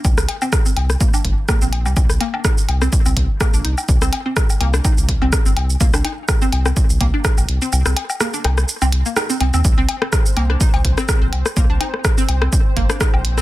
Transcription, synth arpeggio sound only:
X:1
M:4/4
L:1/16
Q:"Swing 16ths" 1/4=125
K:Cm
V:1 name="Synth arpeggio sound"
z3 C z C z2 B, D z2 B, C z G, | z2 B, D E z2 C z C z2 B, D E z | z C z C z2 B, D E z2 C z C z2 | B, D E z2 C z C z2 B, D E z2 C |
z C z2 B, D E z2 C z B, E C C C | z C z C z2 B, D E z2 C z C z2 | B, D E z2 C z C z2 B, D E z2 C |]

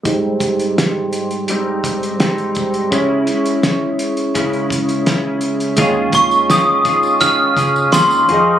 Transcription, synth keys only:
X:1
M:4/4
L:1/8
Q:1/4=84
K:Ab
V:1 name="Synth keys"
[A,EGc]6 [A,EGc]2 | [A,D_Fd]8 | [A,EFd]6- [A,EFd] [CFAe] |]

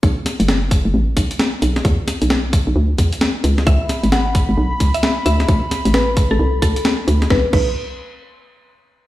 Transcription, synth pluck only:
X:1
M:4/4
L:1/16
Q:"Swing 16ths" 1/4=132
K:Bm
V:1 name="Synth pluck"
z16 | z16 | e2 z2 f2 z4 z e2 z e2 | z4 B2 z A2 z A4- A z |
B z B2 z12 |]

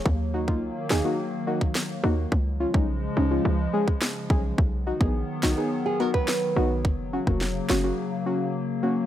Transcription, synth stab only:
X:1
M:4/4
L:1/16
Q:1/4=106
K:D#m
V:1 name="Synth stab"
z2 [DF] [A,DE] z2 [DG] [A,DF] z2 [A,DF] z3 [A,DF] z | z2 [CE] [G,CD] z2 [CD] [G,CE] z2 [G,CG] z3 [G,CG] z | z2 [DF] [B,DG] z2 [DF] [B,DG] z2 [B,DF] z3 [B,DF] z | z2 [CF] [A,CF] z2 [CF] [A,CF] z2 [A,CF] z3 [A,CF] z |]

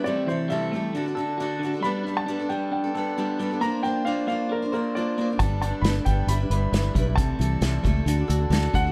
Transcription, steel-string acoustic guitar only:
X:1
M:4/4
L:1/16
Q:1/4=135
K:G
V:1 name="Steel-string acoustic guitar"
[C,E,G,A,EA]2 [G,A,EA]2 [C,E,G,A,EA]2 [G,A,EA]2 [D,DFA] [DFA] [D,DFA]2 [D,DFA]2 [D,DFA] [DFA] | [G,B,DA]2 [G,B,DA]2 [G,B,DA] [B,DA] [G,B,DA]3 [B,DA] [G,B,DA]2 [G,B,DA]2 [G,B,DA] [B,DA] | [_B,D=Fc]2 [B,DFc]2 [B,DFc]2 [B,DFc]3 [DFc] [B,DFc]2 [B,DFc]2 [B,DFc] [DF] | [G,B,DA]2 [G,B,DA]2 [G,B,DA] [B,DA] [G,B,DA]2 [G,DEB] [DEB] [G,DEB]2 [G,DEB]2 [G,DEB] [DEB] |
[C,E,G,A,EA]2 [G,A,EA]2 [C,E,G,A,EA]2 [G,A,EA]2 [D,DFA] [DFA] [D,DFA] [DFA] [D,DFA]2 [D,DFA] [DFA] |]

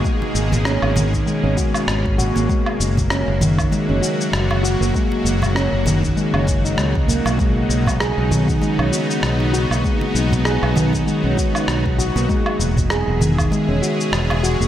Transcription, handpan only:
X:1
M:4/4
L:1/16
Q:"Swing 16ths" 1/4=98
K:B
V:1 name="Handpan"
G,4 C2 D, z G, C F z3 F A, | G,4 C2 D, z G, C F z3 F A, | G,4 C2 D, z G, C z D G, z A, z | G,4 G z D, z G, C F z3 F A, |
G,4 G z D, z G, C F z3 F A, | G,4 G z D, z G, C F z3 F A, |]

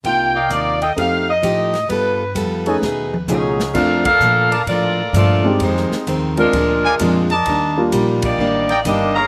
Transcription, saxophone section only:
X:1
M:4/4
L:1/8
Q:"Swing" 1/4=130
K:Bb
V:1 name="Saxophone section"
g2 d e f e3 | =B2 B4 [^F,^C^D^G]2 | [DABf] [DABf]3 [FABd]2 [B,FAd]2 | [_A,EFc]2 z [A,DFB]4 z |
z3 [B,EGd]3 [B,DGe] [_D_ABf] |]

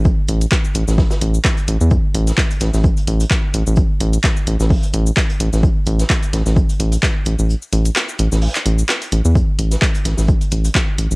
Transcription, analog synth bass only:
X:1
M:4/4
L:1/16
Q:"Swing 16ths" 1/4=129
K:C
V:1 name="Analog synth bass" clef=bass
z2 A,,, z3 A,,, A,,, z2 A,,, z3 A,,, E,, | z2 A,,, z3 A,,, A,,, z2 A,,, z3 A,,, A,,, | z2 A,,, z3 A,,, A,,, z2 A,,, z3 A,,, A,,, | z2 A,,, z3 A,,, A,,, z2 A,,, z3 A,,, A,,, |
z2 A,,, z3 A,,, A,,, z2 A,,, z3 A,,, E,, | z2 A,,, z3 A,,, A,,, z2 A,,, z3 A,,, A,,, |]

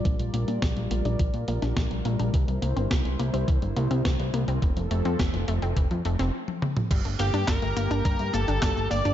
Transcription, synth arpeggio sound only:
X:1
M:4/4
L:1/16
Q:1/4=105
K:Gdor
V:1 name="Synth arpeggio sound"
F, G, B, D F, G, B, D F, G, B, D F, G, B, D | E, G, B, C E, G, B, C E, G, B, C E, G, B, C | E, F, A, C E, F, A, C E, F, A, C z4 | G, A, B, D G, A, B, D G, A, B, D G, A, B, D |]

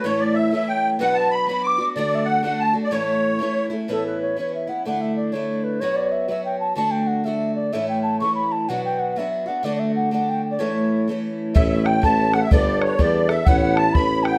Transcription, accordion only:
X:1
M:2/4
L:1/16
Q:"Swing" 1/4=125
K:Amix
V:1 name="Accordion"
c d e2 e g2 z | f a b2 b d'2 z | d2 f2 f a z d | c6 z2 |
z8 | z8 | z8 | z8 |
z8 | z8 | z8 | z8 |
e e g2 a2 f e | d2 c2 d2 e2 | f f a2 b2 g2 |]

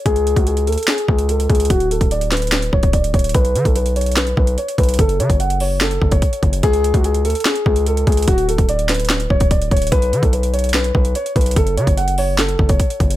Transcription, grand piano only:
X:1
M:4/4
L:1/16
Q:1/4=146
K:Dlyd
V:1 name="Grand piano"
G3 F G2 A2 G2 G2 A2 G2 | F2 A2 d2 B4 c2 d2 c2 | B3 A B2 c2 B2 B2 c2 B2 | A2 c2 f2 c2 A3 c4- c |
G3 F G2 A2 G2 G2 A2 G2 | F2 A2 d2 B4 c2 d2 c2 | B3 A B2 c2 B2 B2 c2 B2 | A2 c2 f2 c2 A3 c4- c |]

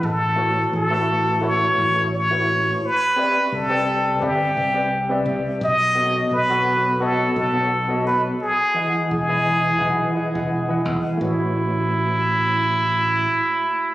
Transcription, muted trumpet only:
X:1
M:4/4
L:1/8
Q:"Swing 16ths" 1/4=86
K:Alyd
V:1 name="Muted trumpet"
A2 A2 c2 c2 | B2 A2 =G3 z | d2 B2 A A2 B | G2 G4 z2 |
E8 |]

